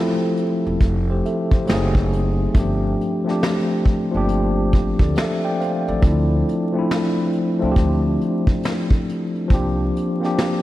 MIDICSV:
0, 0, Header, 1, 4, 480
1, 0, Start_track
1, 0, Tempo, 869565
1, 1405, Time_signature, 4, 2, 24, 8
1, 5862, End_track
2, 0, Start_track
2, 0, Title_t, "Tine electric piano"
2, 0, Program_c, 0, 4
2, 0, Control_c, 0, 64, 127
2, 0, Note_on_c, 0, 53, 88
2, 0, Note_on_c, 0, 57, 68
2, 0, Note_on_c, 0, 60, 74
2, 0, Note_on_c, 0, 64, 74
2, 0, Note_on_c, 0, 67, 92
2, 0, Note_on_c, 0, 69, 91
2, 218, Note_off_c, 0, 69, 0
2, 314, Note_off_c, 0, 53, 0
2, 319, Note_off_c, 0, 57, 0
2, 323, Note_off_c, 0, 60, 0
2, 327, Note_off_c, 0, 64, 0
2, 609, Note_on_c, 0, 72, 69
2, 612, Note_off_c, 0, 67, 0
2, 612, Note_on_c, 0, 67, 62
2, 686, Note_off_c, 0, 72, 0
2, 688, Note_off_c, 0, 67, 0
2, 693, Note_on_c, 0, 76, 60
2, 697, Note_on_c, 0, 69, 60
2, 835, Note_off_c, 0, 76, 0
2, 837, Note_off_c, 0, 69, 0
2, 847, Note_on_c, 0, 72, 62
2, 851, Note_on_c, 0, 67, 59
2, 916, Note_on_c, 0, 54, 92
2, 924, Note_on_c, 0, 57, 94
2, 932, Control_c, 0, 64, 0
2, 932, Note_on_c, 0, 60, 81
2, 940, Note_on_c, 0, 63, 83
2, 949, Note_on_c, 0, 68, 104
2, 1039, Control_c, 0, 64, 127
2, 1071, Note_off_c, 0, 72, 0
2, 1073, Note_off_c, 0, 67, 0
2, 1377, Note_off_c, 0, 54, 0
2, 1382, Note_off_c, 0, 57, 0
2, 1386, Note_off_c, 0, 60, 0
2, 1390, Note_off_c, 0, 63, 0
2, 1394, Note_off_c, 0, 68, 0
2, 1396, Note_on_c, 0, 53, 87
2, 1403, Note_on_c, 0, 57, 77
2, 1412, Control_c, 0, 64, 0
2, 1413, Note_on_c, 0, 59, 54
2, 1420, Note_on_c, 0, 62, 80
2, 1430, Note_on_c, 0, 67, 88
2, 1448, Note_on_c, 0, 60, 79
2, 1455, Note_off_c, 0, 59, 0
2, 1496, Control_c, 0, 64, 127
2, 1763, Note_off_c, 0, 53, 0
2, 1767, Note_off_c, 0, 57, 0
2, 1776, Note_off_c, 0, 62, 0
2, 1780, Note_off_c, 0, 67, 0
2, 1790, Note_off_c, 0, 60, 0
2, 1790, Note_on_c, 0, 53, 81
2, 1800, Note_on_c, 0, 57, 73
2, 1807, Note_on_c, 0, 60, 83
2, 1816, Note_on_c, 0, 62, 80
2, 1825, Note_on_c, 0, 67, 86
2, 2234, Note_off_c, 0, 53, 0
2, 2238, Note_off_c, 0, 57, 0
2, 2242, Note_off_c, 0, 60, 0
2, 2246, Note_off_c, 0, 62, 0
2, 2251, Note_off_c, 0, 67, 0
2, 2269, Note_on_c, 0, 53, 91
2, 2278, Note_on_c, 0, 57, 73
2, 2285, Note_on_c, 0, 58, 61
2, 2294, Note_on_c, 0, 62, 80
2, 2302, Note_on_c, 0, 67, 98
2, 2308, Note_off_c, 0, 58, 0
2, 2321, Note_on_c, 0, 60, 72
2, 2610, Note_off_c, 0, 67, 0
2, 2615, Note_on_c, 0, 72, 58
2, 2617, Note_on_c, 0, 67, 58
2, 2756, Note_off_c, 0, 72, 0
2, 2757, Note_off_c, 0, 67, 0
2, 2767, Note_on_c, 0, 74, 73
2, 2769, Note_on_c, 0, 69, 61
2, 2845, Note_off_c, 0, 74, 0
2, 2846, Note_off_c, 0, 69, 0
2, 2853, Note_on_c, 0, 76, 79
2, 2856, Note_on_c, 0, 69, 61
2, 2995, Note_off_c, 0, 76, 0
2, 2997, Note_off_c, 0, 69, 0
2, 3006, Note_on_c, 0, 79, 82
2, 3008, Note_on_c, 0, 74, 68
2, 3085, Note_off_c, 0, 79, 0
2, 3086, Note_off_c, 0, 74, 0
2, 3092, Note_on_c, 0, 77, 66
2, 3095, Note_on_c, 0, 72, 62
2, 3152, Note_off_c, 0, 53, 0
2, 3156, Note_off_c, 0, 57, 0
2, 3165, Note_off_c, 0, 62, 0
2, 3178, Note_off_c, 0, 60, 0
2, 3235, Note_off_c, 0, 77, 0
2, 3236, Note_off_c, 0, 72, 0
2, 3247, Note_on_c, 0, 74, 70
2, 3251, Note_on_c, 0, 69, 55
2, 3318, Note_on_c, 0, 53, 78
2, 3326, Note_on_c, 0, 57, 73
2, 3333, Control_c, 0, 64, 0
2, 3335, Note_on_c, 0, 60, 77
2, 3342, Note_on_c, 0, 62, 70
2, 3351, Note_on_c, 0, 64, 81
2, 3430, Control_c, 0, 64, 127
2, 3471, Note_off_c, 0, 74, 0
2, 3473, Note_off_c, 0, 69, 0
2, 3684, Note_off_c, 0, 53, 0
2, 3689, Note_off_c, 0, 57, 0
2, 3693, Note_off_c, 0, 60, 0
2, 3697, Note_off_c, 0, 62, 0
2, 3701, Note_off_c, 0, 64, 0
2, 3712, Note_on_c, 0, 53, 76
2, 3720, Note_on_c, 0, 57, 75
2, 3728, Note_on_c, 0, 60, 69
2, 3737, Note_on_c, 0, 62, 72
2, 3745, Note_on_c, 0, 64, 97
2, 4154, Note_off_c, 0, 53, 0
2, 4158, Note_off_c, 0, 57, 0
2, 4162, Note_off_c, 0, 60, 0
2, 4167, Note_off_c, 0, 62, 0
2, 4171, Note_off_c, 0, 64, 0
2, 4189, Note_on_c, 0, 53, 84
2, 4196, Note_on_c, 0, 57, 84
2, 4205, Note_on_c, 0, 60, 86
2, 4214, Note_on_c, 0, 62, 74
2, 4223, Note_on_c, 0, 65, 78
2, 4236, Note_off_c, 0, 65, 0
2, 4259, Note_on_c, 0, 67, 89
2, 5072, Note_off_c, 0, 53, 0
2, 5076, Note_off_c, 0, 57, 0
2, 5080, Note_off_c, 0, 60, 0
2, 5085, Note_off_c, 0, 62, 0
2, 5107, Note_off_c, 0, 67, 0
2, 5234, Note_on_c, 0, 53, 93
2, 5243, Note_on_c, 0, 58, 79
2, 5251, Control_c, 0, 64, 0
2, 5251, Note_on_c, 0, 60, 76
2, 5260, Note_on_c, 0, 62, 75
2, 5268, Note_on_c, 0, 67, 99
2, 5342, Control_c, 0, 64, 127
2, 5602, Note_off_c, 0, 53, 0
2, 5607, Note_off_c, 0, 58, 0
2, 5611, Note_off_c, 0, 60, 0
2, 5615, Note_off_c, 0, 62, 0
2, 5619, Note_off_c, 0, 67, 0
2, 5629, Note_on_c, 0, 53, 72
2, 5637, Note_on_c, 0, 58, 73
2, 5645, Note_on_c, 0, 60, 74
2, 5655, Note_on_c, 0, 62, 71
2, 5663, Note_on_c, 0, 67, 87
2, 5862, Note_off_c, 0, 53, 0
2, 5862, Note_off_c, 0, 58, 0
2, 5862, Note_off_c, 0, 60, 0
2, 5862, Note_off_c, 0, 62, 0
2, 5862, Note_off_c, 0, 67, 0
2, 5862, End_track
3, 0, Start_track
3, 0, Title_t, "Upright bass"
3, 0, Program_c, 1, 32
3, 367, Note_on_c, 1, 28, 90
3, 439, Note_off_c, 1, 28, 0
3, 448, Note_on_c, 1, 29, 89
3, 658, Note_off_c, 1, 29, 0
3, 934, Note_on_c, 1, 30, 109
3, 1353, Note_off_c, 1, 30, 0
3, 1409, Note_on_c, 1, 31, 110
3, 1619, Note_off_c, 1, 31, 0
3, 2287, Note_on_c, 1, 31, 81
3, 2706, Note_off_c, 1, 31, 0
3, 2760, Note_on_c, 1, 38, 88
3, 2836, Note_off_c, 1, 38, 0
3, 3247, Note_on_c, 1, 33, 101
3, 3320, Note_off_c, 1, 33, 0
3, 3329, Note_on_c, 1, 38, 106
3, 3539, Note_off_c, 1, 38, 0
3, 4205, Note_on_c, 1, 36, 82
3, 4279, Note_off_c, 1, 36, 0
3, 4289, Note_on_c, 1, 38, 102
3, 4498, Note_off_c, 1, 38, 0
3, 5249, Note_on_c, 1, 36, 94
3, 5459, Note_off_c, 1, 36, 0
3, 5862, End_track
4, 0, Start_track
4, 0, Title_t, "Drums"
4, 205, Note_on_c, 9, 42, 69
4, 260, Note_off_c, 9, 42, 0
4, 445, Note_on_c, 9, 36, 86
4, 445, Note_on_c, 9, 42, 77
4, 500, Note_off_c, 9, 36, 0
4, 500, Note_off_c, 9, 42, 0
4, 694, Note_on_c, 9, 42, 58
4, 749, Note_off_c, 9, 42, 0
4, 836, Note_on_c, 9, 36, 94
4, 891, Note_off_c, 9, 36, 0
4, 924, Note_on_c, 9, 42, 82
4, 936, Note_on_c, 9, 38, 127
4, 979, Note_off_c, 9, 42, 0
4, 991, Note_off_c, 9, 38, 0
4, 1076, Note_on_c, 9, 36, 101
4, 1131, Note_off_c, 9, 36, 0
4, 1176, Note_on_c, 9, 42, 75
4, 1231, Note_off_c, 9, 42, 0
4, 1405, Note_on_c, 9, 36, 113
4, 1406, Note_on_c, 9, 42, 94
4, 1461, Note_off_c, 9, 36, 0
4, 1461, Note_off_c, 9, 42, 0
4, 1661, Note_on_c, 9, 42, 69
4, 1716, Note_off_c, 9, 42, 0
4, 1814, Note_on_c, 9, 38, 37
4, 1869, Note_off_c, 9, 38, 0
4, 1892, Note_on_c, 9, 42, 87
4, 1893, Note_on_c, 9, 38, 104
4, 1947, Note_off_c, 9, 42, 0
4, 1948, Note_off_c, 9, 38, 0
4, 2125, Note_on_c, 9, 42, 66
4, 2128, Note_on_c, 9, 36, 84
4, 2181, Note_off_c, 9, 42, 0
4, 2183, Note_off_c, 9, 36, 0
4, 2366, Note_on_c, 9, 42, 70
4, 2421, Note_off_c, 9, 42, 0
4, 2612, Note_on_c, 9, 36, 81
4, 2614, Note_on_c, 9, 42, 59
4, 2667, Note_off_c, 9, 36, 0
4, 2669, Note_off_c, 9, 42, 0
4, 2756, Note_on_c, 9, 36, 86
4, 2777, Note_on_c, 9, 42, 36
4, 2812, Note_off_c, 9, 36, 0
4, 2832, Note_off_c, 9, 42, 0
4, 2846, Note_on_c, 9, 42, 76
4, 2858, Note_on_c, 9, 38, 113
4, 2901, Note_off_c, 9, 42, 0
4, 2913, Note_off_c, 9, 38, 0
4, 3099, Note_on_c, 9, 42, 67
4, 3154, Note_off_c, 9, 42, 0
4, 3242, Note_on_c, 9, 42, 35
4, 3297, Note_off_c, 9, 42, 0
4, 3326, Note_on_c, 9, 36, 108
4, 3327, Note_on_c, 9, 42, 83
4, 3381, Note_off_c, 9, 36, 0
4, 3382, Note_off_c, 9, 42, 0
4, 3582, Note_on_c, 9, 42, 68
4, 3637, Note_off_c, 9, 42, 0
4, 3814, Note_on_c, 9, 42, 91
4, 3815, Note_on_c, 9, 38, 101
4, 3869, Note_off_c, 9, 42, 0
4, 3870, Note_off_c, 9, 38, 0
4, 4045, Note_on_c, 9, 42, 74
4, 4100, Note_off_c, 9, 42, 0
4, 4285, Note_on_c, 9, 36, 88
4, 4286, Note_on_c, 9, 42, 79
4, 4340, Note_off_c, 9, 36, 0
4, 4341, Note_off_c, 9, 42, 0
4, 4534, Note_on_c, 9, 42, 57
4, 4589, Note_off_c, 9, 42, 0
4, 4676, Note_on_c, 9, 36, 103
4, 4731, Note_off_c, 9, 36, 0
4, 4765, Note_on_c, 9, 42, 79
4, 4776, Note_on_c, 9, 38, 117
4, 4820, Note_off_c, 9, 42, 0
4, 4832, Note_off_c, 9, 38, 0
4, 4916, Note_on_c, 9, 36, 98
4, 4971, Note_off_c, 9, 36, 0
4, 5019, Note_on_c, 9, 42, 69
4, 5074, Note_off_c, 9, 42, 0
4, 5161, Note_on_c, 9, 42, 33
4, 5216, Note_off_c, 9, 42, 0
4, 5245, Note_on_c, 9, 36, 105
4, 5246, Note_on_c, 9, 42, 94
4, 5300, Note_off_c, 9, 36, 0
4, 5302, Note_off_c, 9, 42, 0
4, 5501, Note_on_c, 9, 42, 77
4, 5556, Note_off_c, 9, 42, 0
4, 5647, Note_on_c, 9, 42, 37
4, 5654, Note_on_c, 9, 38, 38
4, 5702, Note_off_c, 9, 42, 0
4, 5710, Note_off_c, 9, 38, 0
4, 5732, Note_on_c, 9, 42, 89
4, 5733, Note_on_c, 9, 38, 107
4, 5787, Note_off_c, 9, 42, 0
4, 5788, Note_off_c, 9, 38, 0
4, 5862, End_track
0, 0, End_of_file